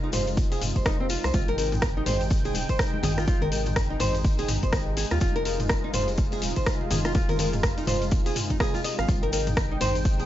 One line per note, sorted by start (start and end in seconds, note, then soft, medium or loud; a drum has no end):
0.00 5.18 C3 medium
0.00 1.30 G#3 medium
0.00 1.31 D#4 medium
0.00 0.09 D#4 medium
0.00 1.30 F4 medium
0.13 0.57 F1 loud
0.13 0.27 C5 loud
0.13 mid tom medium
0.13 open hi-hat medium
0.13 high conga loud
0.13 maracas loud
0.27 closed hi-hat soft
0.27 maracas soft
0.37 kick loud
0.37 closed hi-hat medium
0.37 maracas medium
0.52 0.61 G#4 medium
0.52 open hi-hat medium
0.52 maracas soft
0.62 0.72 F1 medium
0.62 mid tom medium
0.62 open hi-hat medium
0.62 maracas loud
0.76 1.17 F1 loud
0.76 0.85 C5 medium
0.76 kick medium
0.76 closed hi-hat soft
0.76 maracas soft
0.86 1.00 D#4 medium
0.86 kick loud
0.86 cross-stick loud
0.86 closed hi-hat medium
0.86 maracas soft
1.00 1.06 C4 medium
1.10 1.24 F4 medium
1.10 open hi-hat medium
1.10 maracas medium
1.24 1.31 C2 medium
1.24 1.34 C5 medium
1.24 cross-stick medium
1.24 closed hi-hat soft
1.24 maracas soft
1.34 2.02 G#1 loud
1.34 10.26 G#3 medium
1.34 9.05 D#4 medium
1.34 1.47 F4 medium
1.34 5.18 G5 medium
1.34 kick loud
1.34 closed hi-hat medium
1.34 high conga loud
1.34 maracas medium
1.48 1.57 A#4 loud
1.48 closed hi-hat soft
1.58 1.71 A#4 medium
1.58 open hi-hat medium
1.58 maracas medium
1.72 closed hi-hat soft
1.72 mid tom medium
1.72 high conga medium
1.72 maracas soft
1.82 kick loud
1.82 cross-stick loud
1.82 closed hi-hat medium
1.82 maracas medium
1.97 2.02 D#4 medium
2.06 2.51 G#1 loud
2.06 2.20 C5 loud
2.06 mid tom loud
2.06 open hi-hat medium
2.06 high conga medium
2.06 maracas medium
2.21 closed hi-hat soft
2.21 maracas soft
2.31 kick loud
2.31 closed hi-hat medium
2.31 maracas medium
2.45 2.54 G#4 loud
2.45 closed hi-hat soft
2.45 maracas soft
2.54 2.65 D#1 medium
2.54 open hi-hat medium
2.54 high conga medium
2.54 maracas medium
2.69 2.78 C5 medium
2.69 kick medium
2.69 closed hi-hat soft
2.69 maracas soft
2.79 kick loud
2.79 cross-stick loud
2.79 closed hi-hat medium
2.79 maracas medium
2.94 high conga medium
3.03 3.96 G#1 loud
3.03 3.11 G#4 medium
3.03 mid tom medium
3.03 open hi-hat medium
3.03 low conga medium
3.03 maracas loud
3.18 3.26 F4 medium
3.18 cross-stick medium
3.18 closed hi-hat soft
3.18 maracas soft
3.27 3.41 F4 medium
3.27 kick loud
3.27 closed hi-hat medium
3.27 high conga medium
3.27 maracas soft
3.42 3.50 A#4 loud
3.42 closed hi-hat soft
3.42 low conga medium
3.52 3.65 A#4 medium
3.52 open hi-hat medium
3.52 maracas loud
3.66 closed hi-hat soft
3.66 mid tom medium
3.66 high conga medium
3.66 maracas soft
3.76 kick loud
3.76 cross-stick loud
3.76 closed hi-hat medium
3.76 maracas soft
3.90 3.96 D#4 medium
4.00 4.44 G#1 loud
4.00 4.14 C5 loud
4.00 mid tom loud
4.00 open hi-hat medium
4.00 high conga medium
4.00 maracas medium
4.15 closed hi-hat soft
4.15 maracas soft
4.24 kick loud
4.24 closed hi-hat medium
4.24 maracas medium
4.39 4.48 G#4 loud
4.39 open hi-hat soft
4.39 maracas soft
4.48 4.59 G#1 medium
4.48 mid tom medium
4.48 open hi-hat medium
4.48 maracas loud
4.63 5.05 G#1 loud
4.63 4.72 C5 medium
4.63 kick medium
4.63 closed hi-hat soft
4.63 maracas soft
4.73 kick loud
4.73 cross-stick loud
4.73 closed hi-hat medium
4.73 maracas soft
4.97 5.05 G#4 medium
4.97 open hi-hat medium
4.97 maracas medium
5.11 5.18 D#2 medium
5.11 5.20 F4 medium
5.11 cross-stick medium
5.11 closed hi-hat soft
5.11 maracas soft
5.21 5.89 F1 loud
5.21 10.26 C3 medium
5.21 5.34 F4 medium
5.21 9.05 F4 medium
5.21 kick loud
5.21 closed hi-hat medium
5.21 high conga medium
5.21 maracas medium
5.36 5.44 A#4 loud
5.36 closed hi-hat soft
5.45 5.58 A#4 medium
5.45 open hi-hat medium
5.45 maracas medium
5.60 closed hi-hat soft
5.60 mid tom medium
5.60 high conga medium
5.60 maracas soft
5.69 kick loud
5.69 cross-stick loud
5.69 closed hi-hat medium
5.69 maracas soft
5.84 5.89 D#4 medium
5.94 6.38 F1 loud
5.94 6.08 C5 loud
5.94 mid tom loud
5.94 open hi-hat loud
5.94 high conga medium
5.94 maracas medium
6.08 closed hi-hat soft
6.08 maracas soft
6.18 kick loud
6.18 closed hi-hat medium
6.18 maracas soft
6.32 6.41 G#4 loud
6.32 closed hi-hat soft
6.32 maracas soft
6.42 6.53 D#1 medium
6.42 open hi-hat medium
6.42 high conga medium
6.42 maracas medium
6.56 6.65 C5 medium
6.56 kick medium
6.56 closed hi-hat soft
6.56 maracas soft
6.66 kick loud
6.66 cross-stick loud
6.66 closed hi-hat medium
6.66 maracas soft
6.81 high conga medium
6.91 7.83 F1 loud
6.91 6.98 G#4 medium
6.91 mid tom medium
6.91 open hi-hat medium
6.91 low conga medium
6.91 maracas loud
7.05 7.14 F4 medium
7.05 cross-stick medium
7.05 closed hi-hat soft
7.05 maracas soft
7.15 7.28 F4 medium
7.15 kick loud
7.15 closed hi-hat medium
7.15 high conga loud
7.15 maracas soft
7.29 7.38 A#4 loud
7.29 closed hi-hat soft
7.29 low conga medium
7.29 maracas soft
7.39 7.52 A#4 medium
7.39 open hi-hat medium
7.39 low conga medium
7.39 maracas loud
7.53 closed hi-hat soft
7.53 mid tom medium
7.53 high conga medium
7.53 maracas soft
7.63 kick loud
7.63 cross-stick loud
7.63 closed hi-hat medium
7.63 maracas medium
7.78 7.83 D#4 medium
7.78 closed hi-hat soft
7.78 maracas soft
7.87 8.31 F1 loud
7.87 8.01 C5 loud
7.87 mid tom medium
7.87 open hi-hat medium
7.87 high conga loud
7.87 maracas loud
8.02 closed hi-hat soft
8.02 maracas soft
8.11 kick loud
8.11 closed hi-hat medium
8.11 maracas soft
8.26 8.35 G#4 loud
8.26 open hi-hat medium
8.26 maracas soft
8.36 mid tom medium
8.36 open hi-hat medium
8.36 maracas medium
8.50 8.56 D#4 medium
8.50 kick medium
8.50 closed hi-hat soft
8.50 maracas soft
8.60 8.73 G#4 loud
8.60 kick loud
8.60 cross-stick loud
8.60 closed hi-hat medium
8.60 maracas soft
8.74 8.80 F4 medium
8.74 closed hi-hat soft
8.74 high conga medium
8.74 maracas soft
8.84 8.97 D#5 medium
8.84 open hi-hat medium
8.84 maracas medium
8.99 9.06 G#1 medium
8.99 9.07 F5 medium
8.99 cross-stick medium
8.99 closed hi-hat soft
8.99 maracas soft
9.08 9.76 G#1 medium
9.08 10.26 D#4 medium
9.08 9.21 F4 medium
9.08 10.26 G5 medium
9.08 kick loud
9.08 closed hi-hat medium
9.08 high conga medium
9.08 maracas soft
9.23 9.31 A#4 loud
9.23 closed hi-hat soft
9.33 9.46 A#4 medium
9.33 open hi-hat medium
9.33 maracas medium
9.47 closed hi-hat medium
9.47 mid tom medium
9.47 high conga medium
9.47 maracas soft
9.57 kick loud
9.57 cross-stick loud
9.57 closed hi-hat medium
9.57 maracas medium
9.71 9.77 D#4 medium
9.81 10.25 G#1 loud
9.81 9.95 C5 loud
9.81 mid tom loud
9.81 open hi-hat loud
9.81 high conga medium
9.81 maracas medium
9.95 closed hi-hat soft
9.95 maracas soft
10.05 kick loud
10.05 closed hi-hat medium
10.05 maracas medium
10.20 10.26 G#4 loud
10.20 closed hi-hat soft
10.20 maracas soft